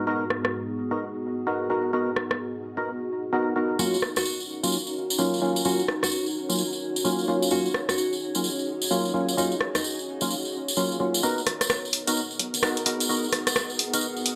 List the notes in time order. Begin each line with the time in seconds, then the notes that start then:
Already playing: G#2 B3 D#4 F#4 G#4
0.07 B3 D#4 F#4 G#4 A#4
0.30 cross-stick
0.45 cross-stick
0.91 B3 D#4 F#4 A#4
1.47 B3 D#4 F#4 A#4
1.70 B3 D#4 F#4 A#4
1.93 B3 D#4 F#4 A#4
2.16 cross-stick
2.31 cross-stick
2.77 B3 D#4 F#4 A#4
3.33 B3 D#4 F#4 A#4
3.56 B3 D#4 F#4 A#4
3.79 F#3 A#3 C#4 D#4 F4 F#4 A#4, tambourine
3.94 tambourine
4.02 cross-stick
4.16 F#4, cross-stick, tambourine
4.25 tambourine
4.38 C#5, tambourine
4.63 F#3 A#3 C#4 F4, tambourine
4.72 tambourine
4.87 tambourine
5.10 tambourine
5.19 F#3 A#3 C#4 F4, tambourine
5.34 tambourine
5.42 F#3 A#3 C#4 F4
5.56 tambourine
5.65 F#3 A#3 C#4 F4 F#4, tambourine
5.79 tambourine
5.88 cross-stick
6.03 F#4, cross-stick, tambourine
6.12 tambourine
6.26 tambourine
6.49 F#3 A#3 C#4 F4, tambourine
6.58 tambourine
6.73 tambourine
6.96 tambourine
7.05 F#3 A#3 C#4 F4, tambourine
7.19 tambourine
7.28 F#3 A#3 C#4 F4
7.42 tambourine
7.51 F#3 A#3 C#4 F4 F#4 G#4, tambourine
7.66 tambourine
7.74 cross-stick
7.89 F#4, cross-stick, tambourine
7.98 tambourine
8.13 tambourine
8.35 F#3 A#3 C#4 F4, tambourine
8.44 tambourine
8.59 tambourine
8.82 tambourine
8.91 F#3 A#3 C#4 F4, tambourine
9.05 tambourine
9.14 F#3 A#3 C#4 F4
9.29 tambourine
9.37 F#3 A#3 C#4 D#4 F4, tambourine
9.52 tambourine
9.61 cross-stick
9.75 D#4, cross-stick, tambourine
9.84 tambourine
9.99 tambourine
10.21 F#3 A#3 C#4 F4, tambourine
10.30 tambourine
10.45 tambourine
10.68 tambourine
10.77 F#3 A#3 C#4 F4, tambourine
10.92 tambourine
11.00 F#3 A#3 C#4 F4
11.14 tambourine
11.23 G#1 B3 D#4 F#4 A#4, tambourine
11.38 tambourine
11.47 G#1, cross-stick, open hi-hat
11.61 cross-stick, closed hi-hat, tambourine
11.70 G#4, cross-stick, tambourine
11.85 tambourine
11.93 open hi-hat
12.07 G#1 B3 D#4 F#4 A#4, closed hi-hat, tambourine
12.17 tambourine
12.31 tambourine
12.36 B1 F#5, open hi-hat
12.54 G#1, closed hi-hat, tambourine
12.63 B3 D#4 F#4 A#4, cross-stick
12.77 closed hi-hat, tambourine
12.86 B3 D#4 F#4 A#4, open hi-hat
13.00 closed hi-hat, tambourine
13.09 G#1 B3 D#4 F#4 A#4, tambourine
13.24 tambourine
13.33 G#1, cross-stick, open hi-hat
13.47 cross-stick, closed hi-hat, tambourine
13.56 cross-stick, tambourine
13.70 tambourine
13.79 open hi-hat
13.93 G#1 B3 D#4 F#4 A#4, closed hi-hat, tambourine
14.01 tambourine
14.17 tambourine
14.26 open hi-hat